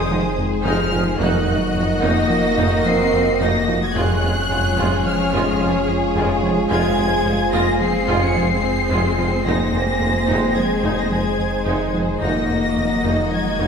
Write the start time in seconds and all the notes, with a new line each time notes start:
Already playing: F1 D#3 G#3 C4 D#4 G#4 C5 D#6
0.10 F1 F2 F3 G#3 D#4
0.38 F2
0.65 F1 F2 F3 G#3 D#4 F6
0.92 F1 F2 F3 G#3 D#4
1.19 F1 F2 F#3 A#3 D#4 F#4 A#4 D#5 F#6
1.47 F1 F2 A#3 D#4
1.74 F1 F2 A#3 D#4
2.02 F1 F2 A#3 D#4 A#6
2.30 F3
2.57 F1 F2 A#3 D#4
2.85 F1 F2 F3 A#3 C4 D#4 C7
3.13 F2
3.40 F1 F2 A#3 D#4 A#6
3.68 F1 F2 F3 A#3 D#4
3.82 G#3 G#6
3.95 F1 F2 F#3 G#3 C#4 F4 G#4 C#5 F#6
4.22 F1 F2 G#3 F4
4.50 F1 F2 G#3 F4
4.77 F1 F2 G#3 F4
5.06 F3 F6
5.33 F1 F2 G#3 F4
5.60 F1 F2 F3 G#3 F4
5.88 F2
6.15 F1 F2 G#3 F4
6.43 F1 F2 F3 G#3 F4
6.70 F1 F2 G#3 C4 F4 C5 G#6
6.98 F1 F2 G#3 F4
7.25 F1 F2 G#3 F4
7.53 F1 F2 G#3 A#3 F4 A#6
7.81 F3 C4 C7
8.08 F1 F2 G#3 F4
8.22 C#4 C#7
8.35 F1 F2 F3 G#3 C4 F4 C7
8.63 F2
8.90 F1 F2 G#3 F4
9.18 F1 F2 F3 G#3 F4
9.46 F1 F2 D#3 G#3 A#3 D#4 G#4 A#6
9.73 F1 F2 G#3 D#4
10.01 F1 F2 G#3 D#4
10.28 F1 F2 G#3 D#4
10.56 F3 G#3 G#6
10.83 F1 F2 G#3 D#4
10.97 A#3 A#6
11.11 F1 F2 F3 G#3 D#4 G#6
11.39 F2
11.66 F1 F2 G#3 D#4
11.93 F1 F2 F3 G#3 D#4
12.21 F1 F2 F#3 A#3 D#4 F#4 A#4 D#5 A#6
12.49 F1 F2 A#3 D#4
12.76 F1 F2 A#3 D#4
13.04 F1 F2 A#3 D#4
13.31 F3 G#3 G#6
13.59 F1 F2 A#3 D#4